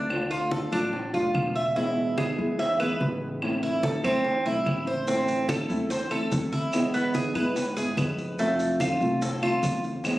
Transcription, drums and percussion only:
0.10 high bongo, high conga, claves
0.31 high bongo, high conga
0.51 high bongo, high conga
0.72 high conga, claves
0.93 high bongo, high conga
1.14 high bongo, high conga
1.35 high bongo, low bongo, high conga, claves
1.56 high bongo, high conga
1.76 high bongo, high conga
1.97 high bongo, high conga
2.18 high bongo, high conga, claves
2.39 high conga
2.59 high bongo, high conga
2.80 high bongo, high conga, claves
3.01 high bongo, low bongo, high conga
3.22 high bongo
3.42 high bongo, high conga, claves
3.63 high bongo, high conga
3.83 high bongo, high conga
4.04 high conga, claves
4.25 high bongo, high conga
4.45 high bongo, high conga
4.66 high bongo, low bongo, high conga, claves
4.87 high bongo, high conga
5.07 high bongo, high conga, maracas
5.28 high bongo, high conga, maracas
5.49 high bongo, high conga, claves, maracas
5.70 high conga, maracas
5.90 high bongo, high conga, maracas
6.11 high bongo, high conga, claves
6.32 high bongo, low bongo, high conga, maracas
6.53 high bongo, high conga, maracas
6.73 high bongo, high conga, claves, maracas
6.94 high bongo, high conga, maracas
7.14 high bongo, high conga, maracas
7.35 high conga, claves, maracas
7.56 high bongo, high conga, maracas
7.77 high bongo, high conga, maracas
7.97 high bongo, low bongo, high conga, claves, maracas
8.18 high bongo, high conga, maracas
8.39 high bongo, high conga, maracas
8.59 high bongo, high conga, maracas
8.80 high bongo, high conga, claves, maracas
9.01 high conga, maracas
9.22 high bongo, high conga, maracas
9.42 high bongo, high conga, claves
9.63 high bongo, low bongo, high conga, maracas
9.84 high bongo, maracas
10.04 high bongo, high conga, claves, maracas

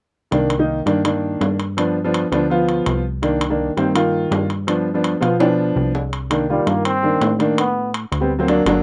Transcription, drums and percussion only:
0.32 high timbale
0.50 high timbale
0.87 high timbale
1.05 high timbale
1.41 high timbale, low timbale
1.60 high timbale
1.78 high timbale
2.14 high timbale
2.32 high timbale
2.69 high timbale
2.86 high timbale
3.23 high timbale
3.41 high timbale
3.78 high timbale
3.96 high timbale
4.32 high timbale, low timbale
4.50 high timbale
4.68 high timbale
5.04 high timbale
5.23 high timbale
5.40 high timbale
5.95 low timbale
6.13 high timbale
6.31 high timbale
6.67 high timbale
6.85 high timbale
7.22 high timbale, low timbale
7.40 high timbale
7.58 high timbale
7.94 high timbale
8.12 high timbale
8.48 high timbale
8.66 high timbale, low timbale

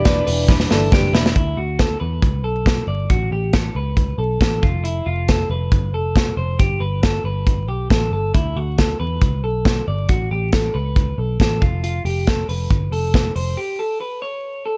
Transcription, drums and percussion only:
0.05 kick, snare, hi-hat pedal, open hi-hat
0.27 hi-hat pedal, open hi-hat
0.48 kick, snare
0.60 snare
0.71 snare
0.92 kick, snare
1.15 snare
1.26 snare
1.36 kick, closed hi-hat
1.79 kick, snare, closed hi-hat
2.22 kick, closed hi-hat
2.66 kick, snare, closed hi-hat
3.10 kick, closed hi-hat
3.53 kick, snare, closed hi-hat
3.97 kick, closed hi-hat
4.41 kick, snare, closed hi-hat
4.63 kick
4.85 closed hi-hat
5.28 kick, snare, closed hi-hat
5.72 kick, closed hi-hat
6.16 kick, snare, closed hi-hat
6.59 kick, closed hi-hat
7.03 kick, snare, closed hi-hat
7.47 kick, closed hi-hat
7.90 kick, snare, closed hi-hat
8.34 kick, closed hi-hat
8.78 kick, snare, closed hi-hat
9.21 kick, closed hi-hat
9.65 kick, snare, closed hi-hat
10.09 kick, closed hi-hat
10.53 kick, snare, closed hi-hat
10.96 kick, closed hi-hat
11.40 kick, snare, closed hi-hat
11.62 kick
11.84 closed hi-hat
12.06 open hi-hat
12.27 kick, snare, closed hi-hat
12.49 open hi-hat
12.71 kick, closed hi-hat
12.93 open hi-hat
13.14 kick, snare, closed hi-hat
13.36 open hi-hat

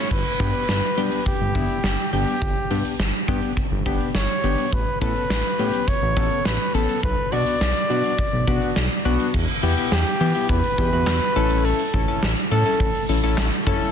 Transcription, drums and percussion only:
0.11 kick, crash
0.40 kick, closed hi-hat
0.54 closed hi-hat
0.69 snare, closed hi-hat
0.98 closed hi-hat
1.12 closed hi-hat
1.26 kick, closed hi-hat
1.55 kick, closed hi-hat
1.70 closed hi-hat
1.84 snare, closed hi-hat
2.13 closed hi-hat
2.27 closed hi-hat
2.42 kick, closed hi-hat
2.71 closed hi-hat
2.85 closed hi-hat
3.00 snare, closed hi-hat
3.28 kick, closed hi-hat
3.42 closed hi-hat
3.57 kick, closed hi-hat
3.86 kick, closed hi-hat
4.00 closed hi-hat
4.15 snare, closed hi-hat
4.44 closed hi-hat
4.58 closed hi-hat
4.73 kick, closed hi-hat
5.01 kick, closed hi-hat
5.16 closed hi-hat
5.30 snare, closed hi-hat
5.59 closed hi-hat
5.73 closed hi-hat
5.88 kick, closed hi-hat
6.17 kick, closed hi-hat
6.31 closed hi-hat
6.45 snare, closed hi-hat
6.74 closed hi-hat
6.89 closed hi-hat
7.03 kick, closed hi-hat
7.32 closed hi-hat
7.47 closed hi-hat
7.61 snare, closed hi-hat
7.90 closed hi-hat
8.04 closed hi-hat
8.19 kick, closed hi-hat
8.47 kick, closed hi-hat
8.62 closed hi-hat
8.76 snare, closed hi-hat
9.05 closed hi-hat
9.20 closed hi-hat
9.34 kick, crash
9.48 closed hi-hat
9.63 closed hi-hat
9.77 closed hi-hat
9.92 snare
10.06 closed hi-hat
10.21 closed hi-hat
10.35 closed hi-hat
10.49 kick, closed hi-hat
10.64 closed hi-hat
10.78 kick, closed hi-hat
10.93 closed hi-hat
11.07 snare, clap
11.22 closed hi-hat
11.36 open hi-hat
11.50 closed hi-hat
11.65 closed hi-hat
11.79 closed hi-hat
11.94 kick, closed hi-hat
12.08 closed hi-hat
12.23 snare
12.37 closed hi-hat
12.52 closed hi-hat
12.66 closed hi-hat
12.80 kick, closed hi-hat
12.95 closed hi-hat
13.09 closed hi-hat
13.23 closed hi-hat
13.38 snare, clap
13.52 closed hi-hat
13.67 kick, open hi-hat
13.81 closed hi-hat

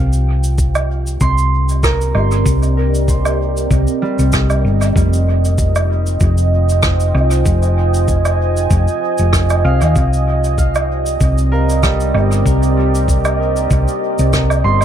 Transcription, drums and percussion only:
0.13 shaker
0.44 shaker
0.58 kick, shaker
0.75 low woodblock, shaker
1.07 shaker
1.21 kick, shaker
1.38 shaker
1.69 shaker
1.83 kick, cross-stick, shaker
2.01 shaker
2.15 low woodblock
2.31 shaker
2.46 kick, shaker
2.63 shaker
2.95 shaker
3.08 kick, shaker
3.25 low woodblock, shaker
3.57 shaker
3.71 kick, shaker
3.87 shaker
4.19 shaker
4.32 kick, cross-stick, shaker
4.50 low woodblock, shaker
4.81 low woodblock, shaker
4.96 kick, shaker
5.13 shaker
5.45 shaker
5.58 kick, shaker
5.75 low woodblock, shaker
6.07 shaker
6.20 kick, shaker
6.38 shaker
6.69 shaker
6.82 kick, cross-stick, shaker
7.00 shaker
7.15 low woodblock
7.31 shaker
7.46 kick, shaker
7.63 shaker
7.94 shaker
8.08 kick, shaker
8.25 low woodblock, shaker
8.57 shaker
8.71 kick, shaker
8.88 shaker
9.18 shaker
9.33 kick, cross-stick, shaker
9.50 low woodblock, shaker
9.81 low woodblock, shaker
9.95 kick, shaker
10.13 shaker
10.44 shaker
10.58 kick, shaker
10.75 low woodblock, shaker
11.06 shaker
11.21 kick, shaker
11.38 shaker
11.70 shaker
11.83 kick, cross-stick, shaker
12.00 shaker
12.14 low woodblock
12.32 shaker
12.46 kick, shaker
12.63 shaker
12.95 shaker
13.08 kick, shaker
13.25 low woodblock, shaker
13.56 shaker
13.70 kick, shaker
13.88 shaker
14.18 shaker
14.33 kick, cross-stick, shaker
14.50 low woodblock, shaker
14.81 low woodblock, shaker

